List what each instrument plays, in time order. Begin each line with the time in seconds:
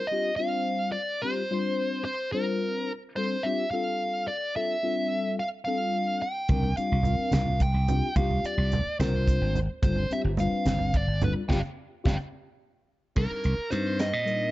0.07 tine electric piano G3, lead electric guitar D#5
0.12 tine electric piano C4 D4 F4 G4
0.36 tine electric piano G3 C4 D4 F4 C5, lead electric guitar F5
0.92 lead electric guitar D5
1.22 tine electric piano G3 C4 D4 F4 G4, lead electric guitar C5
1.51 tine electric piano G3 C4 D4 F4 C5
2.05 lead electric guitar C5
2.32 tine electric piano G3 C4 D4 F4 C5, lead electric guitar A#4
3.16 tine electric piano G3 C4 D4 F4 A4, lead electric guitar C5
3.43 tine electric piano G3 C4 D4 F4 G4, lead electric guitar E5
3.71 tine electric piano G3 C4 D4 F4 A4, lead electric guitar F5
4.28 lead electric guitar D5
4.55 tine electric piano G3 C4 D4 F4 A4, lead electric guitar E5
4.82 tine electric piano G3 C4 D4 F4 A4
5.39 lead electric guitar F5
5.65 tine electric piano G3 C4 D4 F4 A4, lead electric guitar F5
6.22 lead electric guitar G5
6.49 slap bass C2, tine electric piano G3 C4 D4 F4 A#4, kick, closed hi-hat, high conga
6.63 low conga
6.76 tine electric piano G3 C4 D4 F4 G4, lead electric guitar F5, closed hi-hat
6.92 slap bass C2
7.03 tine electric piano G3 C4 D4 F4 A#4, closed hi-hat, low conga
7.31 slap bass C2, lead electric guitar F5, snare, closed hi-hat, high conga
7.46 low conga
7.60 lead electric guitar G5, kick, closed hi-hat
7.74 slap bass C2
7.88 tine electric piano G3 C4 D4 F4 G4, closed hi-hat, low conga
8.16 slap bass C2, tine electric piano G3 C4 D4 F4 G4, lead electric guitar F5, kick, closed hi-hat, high conga
8.31 low conga
8.44 lead electric guitar D5, muted slap bass stroke, closed hi-hat
8.57 slap bass C2
8.72 closed hi-hat, low conga
8.85 muted slap bass stroke
8.99 slap bass C2, tine electric piano G3 C4 D4 F4 A#4, lead electric guitar C5, snare, closed hi-hat, high conga
9.14 low conga
9.28 kick, closed hi-hat
9.41 slap bass G#1
9.55 closed hi-hat, low conga
9.83 slap bass G1, tine electric piano G3 C4 D4 F4 A4, lead electric guitar C5, kick, closed hi-hat, high conga
9.96 low conga
10.10 tine electric piano G3 C4 D4 F4 G4, lead electric guitar E5, muted slap bass stroke, closed hi-hat
10.24 slap bass G1
10.37 tine electric piano G3 C4 D4 F4 B4, lead electric guitar F5, closed hi-hat, low conga
10.65 slap bass G1, snare, closed hi-hat, high conga
10.79 low conga
10.94 lead electric guitar D5, kick, closed hi-hat
11.07 slap bass G1
11.21 tine electric piano G3 C4 D4 F4 A4, lead electric guitar B4, closed hi-hat, low conga
11.49 slap bass G1, tine electric piano D4 F4 G4, lead electric guitar D5 F5 G5, kick, snare, high conga
12.04 slap bass G1, tine electric piano D4 F4 G4, lead electric guitar D5 F5 G5, kick, snare, high conga
13.15 slap bass C2, tine electric piano G3 C4 D4 D#4 A#4, lead electric guitar A#4, kick, crash
13.31 muted slap bass stroke
13.44 slap bass C2, closed hi-hat
13.70 slap bass G2, tine electric piano G3 C4 D4 D#4 C5, lead electric guitar C5, closed hi-hat
13.99 lead electric guitar D#5, snare, closed hi-hat
14.13 slap bass A#2
14.25 tine electric piano G3 C4 D4 D#4 A#4, closed hi-hat